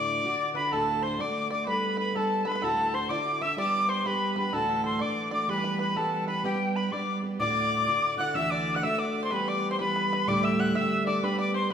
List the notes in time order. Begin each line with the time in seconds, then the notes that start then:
Already playing: D2 A2 D3 D4 E4 F#4 D5 D6
0.23 D3 D4 E4 F#4
0.54 D3 D4 E4 F#4 B4 B5
0.71 D2 A2 D3 A3 D4 F#4 A4 A5
1.02 C5 C6
1.19 D3 A3 D4 F#4 D5 D6
1.50 D3 A3 D4 F#4 D5 D6
1.63 G3 B3 B4 C5
1.68 D4 A4 B5
1.97 B4 B5
2.14 G3 B3 D4 A4 A5
2.45 G3 B3 D4 A4 B4 B5
2.51 B4
2.62 D2 A2 D3 D4 E4 F#4 A4 A5
2.94 C5 C6
3.09 D3 D4 E4 F#4 D5 D6
3.41 D3 D4 E4 F#4 E5 E6
3.57 G3 B3 D4 G4 D5 D6
3.89 C5 C6
4.04 G3 B3 D4 G4 B4 B5
4.35 G3 B3 D4 G4 B4 B5
4.52 D2 A2 E3 A3 D4 F#4 A4 A5
4.69 A4
4.84 A4 C5 C6
4.99 E3 A3 D4 F#4 D5 D6
5.31 E3 A3 D4 F#4 D5 D6
5.48 E3 G3 B3 G4 B4 B5
5.58 B4
5.64 B4
5.79 B4 B5
5.95 E3 G3 B3 G4 A4 A5
6.26 B4 B5
6.44 G3 B3 D4 G4 G5
6.75 B4 B5
6.91 G3 B3 D4 G4 D5 D6
7.22 G3 B3 D4 G4
7.39 D2 A2 D3 D4 E4 F#4 D5 D6
7.87 D3 D4 E4 F#4
8.17 D3 D4 E4 F#4 F#5 F#6
8.34 D2 D3 E3 A3 D4 F#4 E5 E6
8.50 D5 D6
8.75 F#5 F#6
8.82 D3 A3 D4 F#4 E5 E6
8.98 D5 D6
9.10 D5
9.18 D5
9.23 C5 C6
9.31 E3 G3 B3 G4 B4 B5 C6
9.47 D5 D6
9.71 C5 C6
9.79 E3 G3 B3 G4 B4 B5
9.96 B4
10.13 B4
10.27 D2 A2 D3 G3 A3 G4 D5 D6
10.43 E5 E6
10.60 F#5 F#6
10.75 D3 G3 A3 G4 E5 E6
11.05 D5 D6
11.22 G3 B3 D4 G4 B4 B5
11.37 D5 D6
11.54 C5 C6
11.70 B4